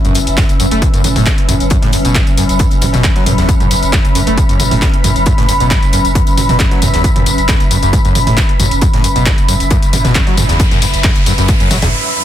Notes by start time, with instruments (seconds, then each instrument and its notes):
Already playing: synth drone F#3 C#4, ambient pad B4 E5 A5
0.05 sub bass F#1, acid bass F#2, closed hi-hat, mid tom, tambourine
0.15 sub bass F#1, acid bass F#2, closed hi-hat, open hi-hat, tambourine
0.27 sub bass F#1, closed hi-hat, tambourine
0.38 acid bass F#2, kick, snare, clap, closed hi-hat, tambourine
0.49 sub bass F#1, closed hi-hat, tambourine
0.60 sub bass F#1, acid bass F#2, closed hi-hat, open hi-hat, tambourine
0.71 sub bass F#1, acid bass A3, closed hi-hat, tambourine
0.82 acid bass A2, kick, closed hi-hat, tambourine
0.94 sub bass F#1, acid bass F#2, closed hi-hat, tambourine
1.04 sub bass F#1, acid bass F#2, closed hi-hat, mid tom, open hi-hat, tambourine
1.16 sub bass F#1, acid bass A2, mid tom, open hi-hat, tambourine
1.26 acid bass C#3, kick, snare, clap, closed hi-hat, tambourine
1.38 closed hi-hat
1.48 sub bass F#1, acid bass F#2, ambient pad B5, closed hi-hat, mid tom, open hi-hat, tambourine
1.60 sub bass F#1, closed hi-hat, tambourine
1.70 acid bass F#2, kick, closed hi-hat, tambourine
1.82 sub bass F#1, acid bass A2, snare, closed hi-hat
1.93 sub bass F#1, acid bass F#2, closed hi-hat, open hi-hat, tambourine
2.05 sub bass F#1, acid bass B2, closed hi-hat, tambourine
2.15 acid bass F#2, kick, snare, clap, closed hi-hat
2.27 sub bass F#1, closed hi-hat, tambourine
2.37 sub bass F#1, acid bass F#2, closed hi-hat, open hi-hat, tambourine
2.49 sub bass F#1, closed hi-hat, tambourine
2.59 acid bass F#2, kick, closed hi-hat, tambourine
2.71 sub bass F#1, closed hi-hat, tambourine
2.82 sub bass F#1, acid bass F#2, closed hi-hat, mid tom, open hi-hat, tambourine
2.93 sub bass F#1, acid bass B2, snare, closed hi-hat, mid tom, tambourine
3.04 acid bass F#2, kick, snare, clap, closed hi-hat, tambourine
3.16 acid bass F#3, snare, closed hi-hat
3.26 sub bass F#1, acid bass F#2, closed hi-hat, mid tom, open hi-hat, tambourine
3.38 sub bass F#1, acid bass E2, snare, closed hi-hat, tambourine
3.49 acid bass F#2, kick, closed hi-hat, tambourine
3.60 sub bass F#1, acid bass F#2, closed hi-hat, mid tom, tambourine
3.71 sub bass F#1, acid bass F#2, closed hi-hat, open hi-hat, tambourine
3.82 sub bass F#1, closed hi-hat, tambourine
3.92 acid bass F#2, kick, snare, clap, closed hi-hat, tambourine
4.05 sub bass F#1, closed hi-hat, tambourine
4.15 sub bass F#1, acid bass F#2, closed hi-hat, open hi-hat, tambourine
4.27 sub bass F#1, acid bass A3, closed hi-hat, tambourine
4.38 acid bass A2, kick, closed hi-hat, tambourine
4.49 sub bass F#1, acid bass F#2, closed hi-hat, tambourine
4.60 sub bass F#1, acid bass F#2, closed hi-hat, mid tom, open hi-hat, tambourine
4.71 sub bass F#1, acid bass A2, mid tom, open hi-hat, tambourine
4.82 acid bass C#3, kick, snare, clap, closed hi-hat, tambourine
4.94 closed hi-hat
5.04 sub bass F#1, acid bass F#2, closed hi-hat, mid tom, open hi-hat, tambourine
5.16 sub bass F#1, closed hi-hat, tambourine
5.26 acid bass F#2, kick, closed hi-hat, tambourine
5.38 sub bass F#1, acid bass A2, snare, closed hi-hat
5.49 sub bass F#1, acid bass F#2, closed hi-hat, open hi-hat, tambourine
5.60 sub bass F#1, acid bass B2, closed hi-hat, tambourine
5.71 acid bass F#2, kick, snare, clap, closed hi-hat, tambourine
5.83 sub bass F#1, closed hi-hat, tambourine
5.93 sub bass F#1, acid bass F#2, closed hi-hat, open hi-hat, tambourine
6.05 sub bass F#1, closed hi-hat, tambourine
6.15 acid bass F#2, kick, closed hi-hat
6.27 sub bass F#1, closed hi-hat, tambourine
6.38 sub bass F#1, acid bass F#2, closed hi-hat, mid tom, open hi-hat, tambourine
6.49 sub bass F#1, acid bass B2, snare, closed hi-hat, mid tom, tambourine
6.59 acid bass F#2, kick, snare, clap, closed hi-hat, tambourine
6.71 acid bass F#3, snare, closed hi-hat
6.82 sub bass F#1, acid bass F#2, closed hi-hat, mid tom, open hi-hat, tambourine
6.94 sub bass F#1, acid bass E2, snare, closed hi-hat, tambourine
7.04 acid bass F#2, kick, closed hi-hat, tambourine
7.16 sub bass F#1, acid bass F#2, closed hi-hat, mid tom, tambourine
7.26 sub bass F#1, acid bass F#2, closed hi-hat, open hi-hat, tambourine
7.38 sub bass F#1, closed hi-hat, tambourine
7.49 acid bass F#2, kick, snare, clap, closed hi-hat, tambourine
7.60 sub bass F#1, closed hi-hat, tambourine
7.71 sub bass F#1, acid bass F#2, closed hi-hat, open hi-hat, tambourine
7.83 sub bass F#1, acid bass F#2, closed hi-hat, tambourine
7.93 acid bass A2, kick, closed hi-hat, tambourine
8.05 sub bass F#1, acid bass F#2, closed hi-hat, tambourine
8.15 sub bass F#1, acid bass F#2, closed hi-hat, mid tom, open hi-hat, tambourine
8.27 sub bass F#1, acid bass A2, mid tom, open hi-hat, tambourine
8.37 acid bass C#3, kick, snare, clap, closed hi-hat, tambourine
8.49 closed hi-hat
8.59 sub bass F#1, acid bass F#2, closed hi-hat, mid tom, open hi-hat, tambourine
8.71 sub bass F#1, closed hi-hat, tambourine
8.81 acid bass F#2, kick, closed hi-hat, tambourine, riser
8.94 sub bass F#1, acid bass A2, snare, closed hi-hat
9.04 sub bass F#1, acid bass F#2, closed hi-hat, open hi-hat, tambourine
9.16 sub bass F#1, acid bass B2, closed hi-hat, tambourine
9.26 acid bass F#2, kick, snare, clap, closed hi-hat
9.38 sub bass F#1, closed hi-hat, tambourine
9.49 sub bass F#1, acid bass F#2, closed hi-hat, open hi-hat, tambourine
9.60 sub bass F#1, closed hi-hat, tambourine
9.71 acid bass F#2, kick, closed hi-hat, tambourine
9.82 sub bass F#1, closed hi-hat, tambourine
9.93 sub bass F#1, acid bass F#2, closed hi-hat, mid tom, open hi-hat, tambourine
10.04 sub bass F#1, acid bass B2, snare, closed hi-hat, mid tom, tambourine
10.15 kick, snare, clap, closed hi-hat, tambourine
10.27 acid bass F#3, snare, closed hi-hat
10.37 sub bass F#1, acid bass F#2, closed hi-hat, mid tom, open hi-hat, tambourine
10.49 sub bass F#1, acid bass E2, snare, closed hi-hat, tambourine
10.60 acid bass F#2, kick, closed hi-hat, tambourine
10.71 sub bass F#1, acid bass F#2, closed hi-hat, mid tom, tambourine
10.82 sub bass F#1, acid bass F#2, closed hi-hat, open hi-hat, tambourine
10.94 sub bass F#1, closed hi-hat, tambourine
11.04 acid bass F#2, kick, snare, clap, closed hi-hat, tambourine
11.15 sub bass F#1, closed hi-hat, tambourine
11.26 sub bass F#1, acid bass F#2, closed hi-hat, open hi-hat, tambourine
11.38 sub bass F#1, acid bass F#2, closed hi-hat, tambourine
11.48 acid bass A2, kick, closed hi-hat, tambourine
11.60 sub bass F#1, acid bass F#2, closed hi-hat, tambourine
11.71 sub bass F#1, acid bass F#3, snare, closed hi-hat, mid tom, open hi-hat, tambourine
11.82 sub bass F#1, acid bass E2, snare, closed hi-hat, mid tom, open hi-hat, tambourine